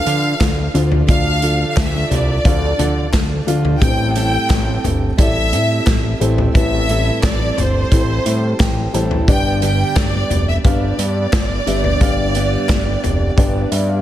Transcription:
Already playing: felt piano D3 D4 F4 A4 B4 D5, violin section F5
0.05 analog synth bass D3, steel-string acoustic guitar F3 D4 F4 A4, closed hi-hat
0.40 analog synth bass D2, kick, snare, clap, closed hi-hat
0.74 analog synth bass D2, steel-string acoustic guitar D3 F3 D4 F4 A4, felt piano D3 D4 F4 A4 C5, closed hi-hat
0.92 floor tom
1.08 analog synth bass D2, steel-string acoustic guitar F3 D4 F4 A4, felt piano D4 F4 A4 D5, violin section F5, kick, closed hi-hat
1.42 steel-string acoustic guitar D3 F3 D4 F4 A4, closed hi-hat
1.71 violin section F5
1.76 analog synth bass D2, violin section E5, kick, snare, clap, closed hi-hat
1.93 steel-string acoustic guitar D4 F4 A4
2.11 analog synth bass C2, violin section D5, closed hi-hat, floor tom
2.44 analog synth bass D2, steel-string acoustic guitar F3 D4 F4 A4, felt piano D4 F4 A4 F5, kick, closed hi-hat
2.78 analog synth bass D3, steel-string acoustic guitar F3 D4 F4 A4, closed hi-hat, floor tom
3.13 analog synth bass D2, kick, snare, clap, closed hi-hat
3.46 analog synth bass D2, steel-string acoustic guitar D3 F3 D4 F4 A4, felt piano D4 F4 A4 F5, closed hi-hat
3.65 floor tom
3.80 analog synth bass A1, felt piano A2 E4 G4 A4 B4, steel-string acoustic guitar G3 C4 E4 A4, violin section G5, kick, closed hi-hat
3.88 felt piano C5
4.15 steel-string acoustic guitar A2 E3 G3 C4 E4 A4, violin section G5, closed hi-hat
4.50 analog synth bass A1, kick, snare, clap, closed hi-hat
4.66 steel-string acoustic guitar G3 C4 E4 A4
4.84 analog synth bass G1, closed hi-hat, floor tom
5.17 analog synth bass A1, steel-string acoustic guitar G3 C4 E4 A4, felt piano E4 G4 A4 D5, violin section E5, kick, closed hi-hat
5.52 analog synth bass A2, steel-string acoustic guitar G3 C4 E4 A4, closed hi-hat
5.87 analog synth bass A1, kick, snare, clap, closed hi-hat
6.20 analog synth bass A1, steel-string acoustic guitar A2 E3 G3 C4 E4 A4, felt piano E4 G4 A4 C5, closed hi-hat
6.38 floor tom
6.54 analog synth bass A1, felt piano A2 E4 G4 A4 B4, steel-string acoustic guitar G3 C4 E4 A4, violin section E5, kick, closed hi-hat
6.89 steel-string acoustic guitar A2 E3 G3 C4 E4 A4, closed hi-hat
7.23 analog synth bass A1, violin section D5, kick, snare, clap, closed hi-hat
7.40 steel-string acoustic guitar G3 C4 E4 A4
7.57 analog synth bass G1, violin section C5, closed hi-hat, floor tom
7.91 analog synth bass A1, steel-string acoustic guitar G3 C4 E4 A4, felt piano E4 G4 A4 C5, kick, closed hi-hat
8.25 analog synth bass A2, steel-string acoustic guitar G3 C4 E4 A4, closed hi-hat
8.60 analog synth bass A1, felt piano G5, kick, snare, clap, closed hi-hat
8.93 analog synth bass A1, steel-string acoustic guitar A2 E3 G3 C4 E4 A4, felt piano E4 G4 A4 C5 A5, closed hi-hat
9.11 floor tom
9.27 analog synth bass G1, felt piano G2 D4 G4 B4 D5, steel-string acoustic guitar G3 B3 D4 G4, violin section G5, kick, closed hi-hat
9.62 steel-string acoustic guitar G2 D3 G3 B3 D4 G4, violin section G5, closed hi-hat
9.96 analog synth bass G1, violin section D5, kick, snare, clap, closed hi-hat
10.13 steel-string acoustic guitar G3 B3 D4 G4
10.30 analog synth bass F1, closed hi-hat, floor tom
10.49 violin section E5
10.64 analog synth bass G1, steel-string acoustic guitar G3 B3 D4 G4, felt piano D4 G4 B4 F5, violin section D5, kick, closed hi-hat
10.98 analog synth bass G2, steel-string acoustic guitar G3 B3 D4 G4, closed hi-hat
11.33 analog synth bass G1, kick, snare, clap, closed hi-hat
11.66 analog synth bass G1, steel-string acoustic guitar G2 D3 G3 B3 D4 G4, felt piano D4 G4 B4 E5, closed hi-hat
11.84 floor tom
12.00 analog synth bass G1, felt piano G2 D4 G4 B4 F5, steel-string acoustic guitar G3 B3 D4 G4, kick, closed hi-hat
12.35 steel-string acoustic guitar G2 D3 G3 B3 D4 G4, closed hi-hat
12.69 analog synth bass G1, kick, snare, clap, closed hi-hat
12.86 steel-string acoustic guitar G3 B3 D4 G4
13.04 analog synth bass F1, closed hi-hat, floor tom
13.36 analog synth bass G1, steel-string acoustic guitar G3 B3 D4 G4, felt piano D4 G4 B4 D5, kick, closed hi-hat
13.71 analog synth bass G2, steel-string acoustic guitar G3 B3 D4 G4, felt piano E5, closed hi-hat
13.89 felt piano F5

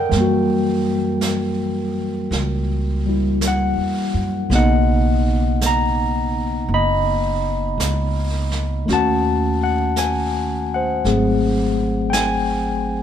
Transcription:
Already playing: tine electric piano C#3 D3 F#3 A#4 F#5 G5
0.09 upright bass F#2, tine electric piano E3 G3, brush sweep, snare
0.16 tine electric piano A#3
0.20 tine electric piano F#4
1.21 brush sweep, snare, hi-hat pedal
2.31 upright bass C#2, brush sweep, snare
3.06 tine electric piano G3 E4
3.41 brush sweep, snare, hi-hat pedal
3.48 tine electric piano F#5
3.77 upright bass E2
4.14 upright bass F#2
4.50 upright bass B1, tine electric piano C#3 A#3 B3, brush sweep, snare
4.55 tine electric piano D#4 D#5 F#5
5.61 brush sweep, snare, hi-hat pedal
5.66 tine electric piano A#5
6.68 upright bass F#1, brush sweep
6.74 tine electric piano D#5 B5
7.78 upright bass C#2, brush sweep, snare, hi-hat pedal
8.51 snare
8.85 upright bass D#2, tine electric piano D#3 A3 C#4, brush sweep, snare
8.90 tine electric piano F#4 F#5 A5
9.64 tine electric piano F#5
9.96 tine electric piano G#5, brush sweep, snare, hi-hat pedal
10.74 tine electric piano C5 F#5
11.04 upright bass G#1, tine electric piano F#3 A3 C4 G#4, brush sweep, snare
12.10 tine electric piano G5 G#5, brush sweep, snare, hi-hat pedal

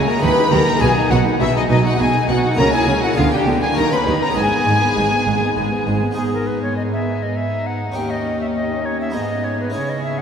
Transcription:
Already playing: harpsichord C#3 A#3 E4 G#4
0.07 viola section A#3, violin section A#4 A#5, recorder A#5
0.18 harpsichord A#3 D#4 G4, violin section B4 B5, recorder B5
0.23 double bass section D#2, harpsichord D#3, cello section D#3, viola section G4
0.37 viola section D#4
0.51 double bass section D#2, harpsichord D#3, cello section D#3, viola section G4, violin section A#4 A#5, recorder B5
0.55 recorder A#5
0.67 viola section D#4
0.76 harpsichord B3 D#4 G#4, violin section G#4
0.81 double bass section B1, harpsichord B2, cello section B2, viola section B3, recorder G#5, violin section G#5
0.96 viola section D#4
1.10 double bass section B1, harpsichord B2, cello section B2, viola section B3, violin section F#4 F#5, recorder F#5
1.25 viola section D#4
1.40 double bass section B1, harpsichord B2, cello section B2, viola section B3, violin section E4 E5, recorder E5
1.55 violin section D#4 D#5, viola section D#4, recorder D#5
1.69 double bass section B1, harpsichord B2, cello section B2, viola section B3, violin section D#4 D#5, recorder D#5
1.84 viola section D#4, violin section F#4 F#5, recorder F#5
1.98 double bass section B1, cello section B2, harpsichord B2, viola section B3, violin section G#4 G#5, recorder G#5
2.14 viola section D#4
2.28 double bass section B1, harpsichord B2, cello section B2, viola section B3, violin section F#4 F#5, recorder G5
2.33 recorder F#5
2.44 viola section D#4
2.54 harpsichord A#3 E4, violin section A#4 A#5
2.58 double bass section C#2, harpsichord C#3, cello section C#3, viola section C#4, recorder A#5
2.72 viola section E4, violin section G#4 G#5, recorder G#5
2.87 double bass section C#2, harpsichord C#3, cello section C#3, viola section C#4
3.03 viola section E4, violin section F#4 F#5, recorder F#5
3.12 harpsichord B3 D4 G#4
3.17 double bass section D2, harpsichord D3, cello section D3, viola section B3, violin section F4 F5, recorder F5
3.32 viola section D4, violin section G4 G5, recorder G5
3.46 double bass section D2, harpsichord D3, cello section D3, viola section B3
3.61 viola section D4, violin section G#4 G#5, recorder G#5
3.71 harpsichord A#3 C#4 G4
3.76 double bass section D#2, harpsichord D#3, cello section D#3, viola section D#4, violin section A#4 A#5, recorder A#5
3.91 viola section C#4, violin section B4 B5, recorder C6
3.97 recorder B5
4.06 double bass section D#2, harpsichord D#3, cello section D#3, viola section D#4
4.22 viola section C#4, violin section A#4 A#5, recorder A#5
4.30 harpsichord G#3 B3 D#4
4.34 double bass section G#1, harpsichord G#2 G#4, cello section G#2, viola section G#3, violin section G#4 G#5, recorder G#5
4.51 viola section B3
4.66 double bass section G#1, harpsichord G#2, cello section G#2, viola section G#3
4.81 viola section B3
4.96 double bass section G#1, harpsichord G#2, cello section G#2, viola section G#3
5.11 viola section B3
5.26 double bass section G#1, cello section G#2, harpsichord G#2, viola section G#3
5.42 viola section B3
5.57 double bass section G#1, harpsichord G#2, cello section G#2, viola section G#3
5.72 viola section B3
5.86 double bass section G#1, cello section G#2, harpsichord G#2, viola section G#3
6.02 viola section B3
6.11 harpsichord G#3 B3 D#4
6.16 harpsichord G#2 G#4, cello section G#2, viola section B3, violin section D#4 G#4, recorder G#4
6.34 recorder A#4
6.47 recorder B4
6.63 recorder C#5
6.77 recorder D#5
6.92 recorder E5
7.23 recorder D#5
7.36 recorder E5
7.67 recorder F#5
7.92 harpsichord C#4 D#4 G4, recorder G5
7.96 cello section D#2, harpsichord D#2, viola section C#4, violin section G4
8.10 recorder D#5
8.41 recorder E5
8.55 recorder D#5
8.85 recorder C#5
9.01 recorder E5
9.10 harpsichord B3 D#4 G#4
9.14 harpsichord G#2, cello section G#2, viola section B3, violin section G#4, recorder D#5
9.44 recorder C#5
9.60 recorder B4
9.70 harpsichord C#4 E4 G#4
9.74 cello section C#3, harpsichord C#3, viola section C#4, violin section E4, recorder C#5
9.89 recorder D#5
10.04 recorder E5
10.18 recorder F#5

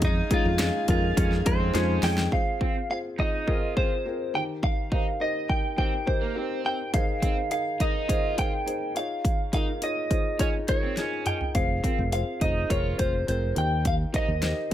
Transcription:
Already playing: fingered electric bass F2, felt piano G#3 C#4 D#4 F4 G#4, string section G#4 D#5 F5 G#5
0.02 clean electric guitar D#4, kick, closed hi-hat
0.31 felt piano G#3 C#4 D#4 F4 G#4, overdriven electric guitar D#4, clean electric guitar F4, kick, closed hi-hat
0.45 fingered electric bass F2
0.59 felt piano G#3 C#4 D#4 F4 G#4, snare, closed hi-hat
0.88 fingered electric bass F2, felt piano G#3 C#4 D#4 F4 A#4, clean electric guitar F4, kick, closed hi-hat
1.17 fingered electric bass F2, felt piano G#3 C#4 D#4 F4 G#4, overdriven electric guitar C#4, kick, closed hi-hat
1.32 snare
1.45 fingered electric bass F2, felt piano G#3 C#4 D#4 F4 G#4, clean electric guitar C5, kick, closed hi-hat
1.60 overdriven electric guitar C4
1.74 fingered electric bass F2, felt piano G#3 C#4 D#4 F4 G#4, overdriven electric guitar C#4, snare, closed hi-hat
2.02 fingered electric bass F2, felt piano G#3 C#4 D#4 F4 G#4, clean electric guitar G5, snare, open hi-hat
2.18 snare
2.32 felt piano C4 F4 G#4 C5, clean electric guitar F5, kick
2.61 felt piano C4 F4 G#4 C5, overdriven electric guitar C4, kick
2.90 felt piano C4 F4 G#4 C5, clean electric guitar F5
3.18 felt piano C4 F4 G#4 D#5, overdriven electric guitar D#4, clean electric guitar D#5, kick
3.47 felt piano C4 F4 G#4 A#4, overdriven electric guitar F4, kick
3.76 felt piano C4 F4 G#4 C5, overdriven electric guitar F4, clean electric guitar C5, kick
4.05 felt piano C4 F4 G#4 A#4
4.34 felt piano D#3 D#4 G4 A#4 C5, clean electric guitar G5
4.63 clean electric guitar F5, kick
4.92 felt piano D#4 G4 A#4 C5, overdriven electric guitar D#4, kick
5.20 felt piano D#4 G4 A#4 C5, clean electric guitar D#5
5.49 felt piano D#4 G4 A#4 D#5, clean electric guitar G5, kick
5.77 overdriven electric guitar C4, felt piano D#4 G4 A#4 C5, clean electric guitar G5, kick
6.06 felt piano D#4 G4 A#4 C5, clean electric guitar C5, kick
6.21 overdriven electric guitar A#3
6.35 overdriven electric guitar C4, felt piano D#4 G4 A#4 C5
6.64 felt piano D#4 G4 A#4 C5, clean electric guitar G5
6.94 felt piano D#3 D#4 G#4 A#4 C5, clean electric guitar F5, kick, closed hi-hat
7.22 overdriven electric guitar C4, felt piano D#4 G#4 A#4 C5, kick, closed hi-hat
7.51 felt piano D#4 G#4 A#4 D#5, clean electric guitar F5, closed hi-hat
7.80 overdriven electric guitar D#4, felt piano D#4 G#4 A#4 D#5, clean electric guitar D#5, kick, closed hi-hat
8.08 felt piano D#4 G#4 A#4 C5, overdriven electric guitar F4, kick, closed hi-hat
8.37 felt piano D#4 G#4 A#4 C5, overdriven electric guitar F4, clean electric guitar G5, kick, closed hi-hat
8.66 felt piano D#4 G#4 A#4 C5, closed hi-hat
8.95 felt piano D#4 F4 G#4 C#5, clean electric guitar F5, closed hi-hat
9.25 kick, closed hi-hat
9.53 felt piano D#4 F4 G#4 A#4, overdriven electric guitar D#4, clean electric guitar F5, kick, closed hi-hat
9.82 felt piano D#4 F4 G#4 C#5, clean electric guitar D#5, closed hi-hat
10.10 felt piano D#4 F4 G#4 C5, kick, closed hi-hat
10.39 overdriven electric guitar C#4, felt piano D#4 F4 G#4 D#5, clean electric guitar C#5, kick, closed hi-hat
10.68 felt piano D#4 F4 G#4 A#4, clean electric guitar C#5, kick, closed hi-hat
10.83 overdriven electric guitar C4
10.97 overdriven electric guitar C#4, felt piano D#4 F4 G#4 D#5, snare, closed hi-hat
11.25 felt piano D#4 F4 G#4 D#5, clean electric guitar G5, closed hi-hat, mid tom
11.41 floor tom
11.55 fingered electric bass F1, felt piano C4 F4 G#4 C5, clean electric guitar F5, kick, closed hi-hat
11.83 felt piano C4 F4 G#4 A#4, overdriven electric guitar C4, kick, closed hi-hat
11.98 fingered electric bass F1
12.12 felt piano C4 F4 G#4 C5, clean electric guitar F5, closed hi-hat
12.40 fingered electric bass F1, felt piano C4 F4 G#4 C5, overdriven electric guitar D#4, clean electric guitar D#5, kick, closed hi-hat
12.69 fingered electric bass F1, felt piano C4 F4 G#4 A#4, overdriven electric guitar F4, clean electric guitar C#5, kick, closed hi-hat
12.98 fingered electric bass F1, felt piano C4 F4 G#4 C5, overdriven electric guitar F4, clean electric guitar C5, kick, closed hi-hat
13.27 fingered electric bass F1, felt piano C4 F4 G#4 A#4, clean electric guitar C5, closed hi-hat
13.55 fingered electric bass D#2, felt piano D#3 D#4 G4 A#4 C5, clean electric guitar G5, closed hi-hat
13.85 clean electric guitar F5, kick, closed hi-hat
14.13 felt piano D#4 G4 A#4 C5, overdriven electric guitar D#4, clean electric guitar D#5, kick, closed hi-hat
14.28 fingered electric bass D#2
14.41 felt piano D#4 G4 A#4 C5, snare, closed hi-hat
14.70 felt piano D#4 G4 A#4 D#5

